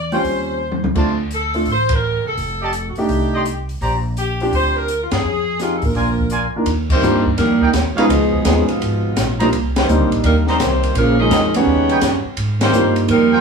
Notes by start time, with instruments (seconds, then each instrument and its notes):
Already playing: upright bass E2
0.12 grand piano G3 C4 C#4 F4, trumpet section F4 C5 C#5 G5, saxophone section C5, open hi-hat
0.24 upright bass D#2, kick, open hi-hat
0.72 high tom
0.83 upright bass C#2, high tom
0.95 upright bass D2, grand piano A3 C4 D4 F4, trumpet section F4 C5 D5 A5, kick, crash
1.31 saxophone section A4, closed hi-hat
1.54 grand piano A3 C4 D4 F4, open hi-hat
1.66 upright bass A1, kick, open hi-hat
1.72 saxophone section C5
1.89 kick, ride
1.93 saxophone section A#4
2.25 upright bass C2, saxophone section A4
2.37 upright bass F1, kick, open hi-hat
2.62 trumpet section G4 D5 D#5 A5
2.73 closed hi-hat
2.89 saxophone section F#4
2.95 upright bass E1, grand piano A3 D4 D#4 G4, saxophone section G4, open hi-hat
3.09 upright bass C2, kick, open hi-hat
3.34 trumpet section G4 D5 D#5 C6
3.46 closed hi-hat
3.69 open hi-hat
3.81 upright bass A#1, trumpet section G4 C5 D5 A#5, kick, open hi-hat
4.17 saxophone section G4, closed hi-hat
4.40 grand piano C4 D4 F4 G4, open hi-hat
4.52 upright bass D2, saxophone section C5, kick, open hi-hat
4.77 saxophone section A#4
4.88 closed hi-hat
5.03 saxophone section F4
5.11 upright bass F#2, saxophone section G#4, snare, ride
5.24 upright bass F2
5.59 grand piano C4 D#4 G4 G#4, saxophone section F4, snare, closed hi-hat
5.76 saxophone section A4
5.82 upright bass A1, trombone section D3 F3 A#3, saxophone section A#4, kick, open hi-hat
5.95 upright bass A#1, trumpet section F4 A#4 D5 G#5, kick, open hi-hat
6.18 kick
6.30 trumpet section F4 A#4 D5 G#5, closed hi-hat
6.54 grand piano D#3 A#3 D4 F4 A#4, muted upright bass stroke
6.66 upright bass D#2, kick, ride
6.90 trombone section D#3 G3 C4, saxophone section A#3 D#4 G4 C5, kick, crash
7.02 upright bass G2, grand piano G3 A#3 D4 D#4 F4, hi-hat pedal
7.25 kick
7.36 upright bass F2, trombone section D#3 G3 A#3, saxophone section G3 D4 D#4 A#4, snare, ride
7.61 trumpet section D#4 A#4 D5 G5, muted upright bass stroke, kick
7.73 upright bass D#2, kick, snare, hi-hat pedal, ride
7.94 trombone section B2 F3 G#3, saxophone section F3 B3 D#4 G#4, grand piano C#4, trumpet section D#4 B4 C#5 F5, muted upright bass stroke, ride
7.98 grand piano G#3 B3 D#4 F4
8.09 upright bass C#2, kick, ride
8.33 kick
8.45 upright bass D#2, grand piano G#3 B3 C#4 D#4 F4, snare, hi-hat pedal, ride
8.67 trombone section G#2 B2 F3, saxophone section G#3 B3 D#4 F4, ride
8.81 upright bass G#1, kick, ride
9.16 upright bass A#1, kick, snare, hi-hat pedal, ride
9.40 grand piano G3 A#3 C4 D4 F4, trumpet section D#4 C5 D5 A#5, ride
9.53 upright bass C2, kick, ride
9.76 trombone section D#3 G3 C4, saxophone section A#3 D#4 G4 C5, snare, ride
9.88 upright bass D2, grand piano G3 A#3 C4 D4 D#4, hi-hat pedal
10.00 upright bass C2
10.12 upright bass A#1, ride
10.24 upright bass D#2, trombone section D#3 G3 A#3, saxophone section G3 D4 D#4 A#4, kick, ride
10.47 trombone section D#3 G3 C4, saxophone section A#3 D#4 G4 C5, trumpet section D#4 C5 D5 A#5, snare
10.60 upright bass C2, kick, snare, hi-hat pedal, ride
10.83 ride
10.95 upright bass A#1, trombone section C#3 F3 A#3, saxophone section G#3 C#4 F4 A#4, kick, ride
11.19 trombone section F3 G#3 D#4, saxophone section C#4 G#4 A#4 D#5
11.31 upright bass F2, kick, snare, hi-hat pedal, ride
11.54 trombone section C#3 G3 C#4, grand piano G3 B3 C#4 D#4 F#5, saxophone section B3 F#4 G4 C#5, ride
11.67 upright bass D#2, kick
11.89 trumpet section D#4 B4 C#5 G5, ride
12.01 upright bass F#2, kick, snare, hi-hat pedal, ride
12.25 muted upright bass stroke
12.37 upright bass G#2, kick, ride
12.60 trombone section D#3 G3 C4, saxophone section A#3 D#4 G4 C5, snare, ride
12.73 upright bass G2, grand piano G3 A#3 C4 D#4 F4, hi-hat pedal
12.96 ride
13.08 upright bass F2, trombone section D#3 G3 A#3, saxophone section G3 C4 D#4 A#4, kick, ride
13.32 trumpet section F4 A#4 C5 G5